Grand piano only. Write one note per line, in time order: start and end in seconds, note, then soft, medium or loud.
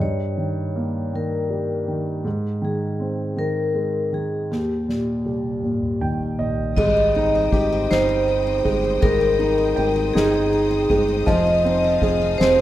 0.00 2.21 G2 medium
0.38 1.12 D#3 soft
0.76 2.21 A#3 soft
1.13 1.87 D#3 soft
1.50 2.23 G3 soft
1.88 2.24 D#3 soft
2.24 4.46 G#2 soft
2.62 3.35 D#3 soft
3.00 4.46 C4 soft
3.37 4.11 D#3 soft
3.75 4.48 G#3 soft
4.12 4.49 D#3 soft
4.51 6.73 D#2 soft
4.88 5.62 A#2 soft
5.26 6.73 G3 soft
5.64 6.37 A#2 soft
6.01 6.75 D#3 soft
6.01 6.36 G5 soft
6.39 6.75 A#2 soft
6.39 6.74 D#5 medium
6.78 8.63 G#3 medium
7.16 7.89 D#4 medium
7.52 8.98 G4 soft
7.91 9.36 D#4 medium
8.65 9.00 G#3 medium
9.01 10.88 G#3 medium
9.39 10.13 D#4 medium
9.76 11.22 G5 medium
10.15 11.24 D#4 medium
10.90 11.26 G#3 medium
11.27 12.61 F3 medium
11.65 12.39 C4 medium
12.02 12.61 G#4 medium
12.41 12.61 C4 medium